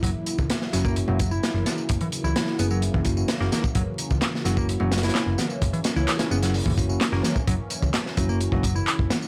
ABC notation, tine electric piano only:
X:1
M:4/4
L:1/16
Q:1/4=129
K:F#mix
V:1 name="Tine electric piano"
z6 [A,CEF]3 [A,CEF] z6 | z6 [A,CEG]4 [A,CEF] [A,CEF] z [A,CEF] z2 | z6 [A,CEF]3 [A,CEF] z6 | z6 [A,CEG]4 [A,CEF] [A,CEF] z [A,CEF] z2 |
z6 [A,CEF]3 [A,CEF] z6 |]